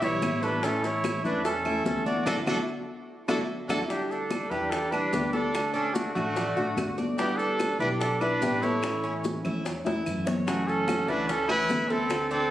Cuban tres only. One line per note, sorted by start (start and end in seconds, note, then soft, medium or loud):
0.02 0.42 E4 medium
0.43 0.63 A4 medium
0.63 1.03 C#4 medium
1.04 1.44 E4 medium
1.45 1.65 A4 medium
1.65 2.05 E4 medium
2.06 2.26 D4 medium
2.26 2.40 D4 loud
2.26 2.40 E4 medium
2.26 2.40 F#4 medium
2.46 2.60 D4 medium
2.46 2.60 E4 medium
2.46 2.60 F#4 medium
3.28 3.42 D4 medium
3.28 3.42 E4 loud
3.28 3.42 F#4 medium
3.69 3.83 D4 medium
3.69 3.83 E4 medium
3.69 3.83 F#4 medium
3.90 4.30 D4 medium
4.31 4.51 A4 medium
4.51 4.91 G4 medium
4.92 5.12 D4 medium
5.13 5.33 G4 medium
5.33 5.73 A4 medium
5.74 6.14 D4 medium
6.15 6.36 F#4 medium
6.36 6.56 D5 medium
6.57 6.97 F#4 medium
6.98 7.18 D5 medium
7.18 7.59 D4 medium
7.59 7.80 B4 medium
7.80 8.20 G4 medium
8.21 8.41 D4 medium
8.42 8.62 G4 medium
8.63 9.03 A4 medium
9.04 9.43 C#4 medium
9.45 9.65 E4 medium
9.65 9.85 C#5 medium
9.86 10.26 E4 medium
10.27 10.46 C#5 medium
10.47 10.87 C#4 medium
10.88 11.08 F#4 medium
11.08 11.48 E4 medium
11.50 11.69 C#4 medium
11.70 11.89 E4 medium
11.90 12.30 A4 medium
12.31 12.51 D4 medium